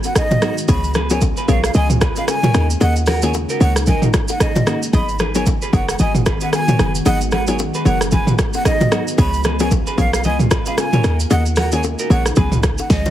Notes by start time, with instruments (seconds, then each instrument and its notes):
Already playing: ambient pad D#3 G#3 B3 F#4
0.03 flute F#5, high bongo, shaker
0.15 clean electric guitar D#4 G#4, flute D#5, kick, cross-stick, high bongo, shaker
0.31 mid tom, low bongo, shaker
0.42 synth pluck F#3 B3 D#4 G#4, clean electric guitar D#4 F#4, cross-stick, shaker
0.58 shaker
0.68 808-style bass C#2, ambient pad C#3 F4, synth pluck F3 B3 C#4 G#4, clean electric guitar G#4 C#5, flute B5, kick, low conga, shaker
0.84 shaker
0.94 clean electric guitar G#4 B4, cross-stick, low conga, shaker
1.10 synth pluck F3 B3 C#4 G#4, clean electric guitar A#4 C#5, flute G#5, low bongo, shaker
1.21 kick, high bongo, shaker
1.37 clean electric guitar G#4 B4, shaker
1.48 808-style bass B1, synth pluck F3 B3 C#4 G#4, clean electric guitar A#4 C#5, flute F5, kick, shaker
1.64 flute F5, cross-stick, shaker
1.74 808-style bass C#2, clean electric guitar B4 D#5, flute G#5, low conga, shaker
1.90 mid tom, shaker
2.01 clean electric guitar G#4 B4, kick, cross-stick, low bongo, shaker
2.16 clean electric guitar G#4 B4, flute F5, high bongo, shaker
2.28 flute G#5, cross-stick, high bongo, shaker
2.43 clean electric guitar A#4 C#5, mid tom, low bongo, shaker
2.54 808-style bass D#2, synth pluck D#3 A#3 C#4 G#4, ambient pad A#3 D#4, clean electric guitar D#4 A#4, cross-stick, shaker
2.70 shaker
2.81 808-style bass D#2, synth pluck D#3 A#3 C#4 G#4, clean electric guitar A#4 D#5, flute F#5, low conga, shaker
2.96 shaker
3.06 clean electric guitar F#4 A#4, flute F#5, cross-stick, open hi-hat, low bongo, low conga, shaker
3.22 synth pluck D#3 A#3 C#4 G#4, clean electric guitar A#4 C#5, flute G#5, low bongo, shaker
3.34 high bongo, shaker
3.49 clean electric guitar F#4 A#4, shaker
3.60 808-style bass C#2, synth pluck D#3 A#3 C#4 G#4, clean electric guitar A#4 C#5, flute F#5, shaker
3.76 cross-stick, shaker
3.86 clean electric guitar D#4 A#4, flute G#5, kick, low conga, shaker
4.02 mid tom, shaker
4.14 kick, cross-stick, low bongo, shaker
4.28 flute F#5, high bongo, shaker
4.40 clean electric guitar D#4 G#4, flute D#5, kick, cross-stick, high bongo, shaker
4.56 mid tom, low bongo, shaker
4.67 synth pluck D#3 A#3 C#4 G#4, clean electric guitar D#4 F#4, cross-stick, shaker
4.83 shaker
4.93 808-style bass G#1, ambient pad D#3 G#3 B3 F#4, synth pluck F#3 B3 D#4 G#4, clean electric guitar B4 D#5, flute B5, kick, low conga, shaker
5.09 shaker
5.19 clean electric guitar G#4 B4, cross-stick, low conga, shaker
5.35 synth pluck F#3 B3 D#4 G#4, clean electric guitar A#4 C#5, flute G#5, low bongo, shaker
5.46 kick, high bongo, shaker
5.62 clean electric guitar G#4 B4, shaker
5.73 808-style bass F#1, synth pluck F#3 B3 D#4 G#4, clean electric guitar A#4 C#5, flute F#5, kick, shaker
5.88 flute F#5, cross-stick, shaker
5.99 808-style bass G#1, clean electric guitar B4 D#5, flute G#5, low conga, shaker
6.15 mid tom, shaker
6.26 clean electric guitar G#4 B4, kick, cross-stick, low bongo, shaker
6.41 clean electric guitar G#4 B4, flute F#5, high bongo, shaker
6.53 flute G#5, cross-stick, high bongo, shaker
6.68 clean electric guitar A#4 C#5, mid tom, low bongo, shaker
6.79 808-style bass F#1, synth pluck F#3 B3 D#4 G#4, clean electric guitar G#4 B4, cross-stick, shaker
6.95 shaker
7.06 808-style bass G#1, synth pluck F#3 B3 D#4 G#4, clean electric guitar B4 D#5, flute F#5, low conga, shaker
7.21 shaker
7.31 clean electric guitar G#4 B4, flute F#5, cross-stick, low conga, shaker
7.47 synth pluck F#3 B3 D#4 G#4, clean electric guitar A#4 C#5, flute G#5, low bongo, shaker
7.59 high bongo, shaker
7.74 clean electric guitar G#4 B4, shaker
7.85 808-style bass F#1, synth pluck F#3 B3 D#4 G#4, clean electric guitar A#4 C#5, flute F#5, shaker
8.01 cross-stick, shaker
8.11 clean electric guitar G#4 B4, flute G#5, kick, low conga, shaker
8.27 mid tom, shaker
8.38 kick, cross-stick, low bongo, shaker
8.53 flute F#5, high bongo, shaker
8.65 clean electric guitar D#4 G#4, flute D#5, kick, cross-stick, high bongo, shaker
8.80 mid tom, low bongo, shaker
8.91 synth pluck F#3 B3 D#4 G#4, clean electric guitar D#4 F#4, cross-stick, shaker
9.08 shaker
9.18 808-style bass C#2, ambient pad C#3 F4, synth pluck F3 B3 C#4 G#4, clean electric guitar G#4 C#5, flute B5, kick, low conga, shaker
9.34 shaker
9.44 clean electric guitar G#4 B4, cross-stick, low conga, shaker
9.60 synth pluck F3 B3 C#4 G#4, clean electric guitar A#4 C#5, flute G#5, low bongo, shaker
9.71 kick, high bongo, shaker
9.87 clean electric guitar G#4 B4, shaker
9.98 808-style bass B1, synth pluck F3 B3 C#4 G#4, clean electric guitar A#4 C#5, flute F5, kick, shaker
10.13 flute F5, cross-stick, shaker
10.24 808-style bass C#2, clean electric guitar B4 D#5, flute G#5, low conga, shaker
10.39 mid tom, shaker
10.51 clean electric guitar G#4 B4, kick, cross-stick, low bongo, shaker
10.66 clean electric guitar G#4 B4, flute F5, high bongo, shaker
10.78 flute G#5, cross-stick, high bongo, shaker
10.93 clean electric guitar A#4 C#5, mid tom, low bongo, shaker
11.04 808-style bass D#2, synth pluck D#3 A#3 C#4 G#4, ambient pad A#3 D#4, clean electric guitar D#4 A#4, cross-stick, shaker
11.20 shaker
11.30 808-style bass D#2, synth pluck D#3 A#3 C#4 G#4, clean electric guitar A#4 D#5, flute F#5, low conga, shaker
11.46 shaker
11.56 clean electric guitar F#4 A#4, flute F#5, cross-stick, open hi-hat, low conga, shaker
11.72 synth pluck D#3 A#3 C#4 G#4, clean electric guitar A#4 C#5, flute G#5, low bongo, shaker
11.83 high bongo, shaker
11.99 clean electric guitar F#4 A#4, shaker
12.10 808-style bass A#1, synth pluck D#3 A#3 C#4 G#4, clean electric guitar A#4 C#5, flute F#5, shaker
12.26 cross-stick, shaker
12.36 808-style bass C#2, synth pluck F#3 B3 C#4 G#4, ambient pad B3 F#4, clean electric guitar G#4 B4, flute G#5, kick, low conga, shaker
12.52 mid tom, shaker
12.63 kick, cross-stick, low bongo, shaker
12.78 flute F#5, high bongo, shaker
12.90 808-style bass C#2, clean electric guitar C#4 G#4, flute D#5, kick, snare, high bongo, shaker
13.05 low bongo, shaker